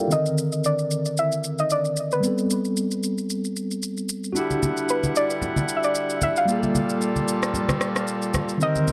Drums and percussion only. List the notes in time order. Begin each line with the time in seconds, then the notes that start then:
0.11 shaker
0.26 shaker
0.38 shaker
0.52 shaker
0.64 shaker
0.79 shaker
0.91 shaker
1.05 shaker
1.17 shaker
1.32 shaker
1.44 shaker
1.59 shaker
1.70 shaker
1.85 shaker
1.97 shaker
2.11 shaker
2.23 shaker
2.38 shaker
2.50 shaker
2.65 shaker
2.77 shaker
2.91 shaker
3.03 shaker
3.18 shaker
3.30 shaker
3.44 shaker
3.56 shaker
3.71 shaker
3.83 shaker
3.97 shaker
4.09 shaker
4.24 shaker
4.36 shaker
4.51 high conga, shaker
4.63 high conga, shaker
4.77 shaker
4.89 shaker
5.04 high conga, shaker
5.16 shaker
5.30 shaker
5.42 low conga, shaker
5.56 high conga, shaker
5.68 shaker
5.83 shaker
5.95 shaker
6.10 shaker
6.21 high conga, low conga, shaker
6.36 shaker
6.48 shaker
6.63 high conga, shaker
6.75 high conga, shaker
6.89 shaker
7.01 shaker
7.16 high conga, shaker
7.28 shaker
7.43 cross-stick, shaker
7.54 low conga, shaker
7.69 cross-stick, high conga, shaker
7.81 cross-stick, shaker
7.96 cross-stick, shaker
8.07 shaker
8.22 shaker
8.34 cross-stick, high conga, low conga, shaker
8.49 shaker
8.61 shaker
8.75 high conga, shaker
8.88 high conga, shaker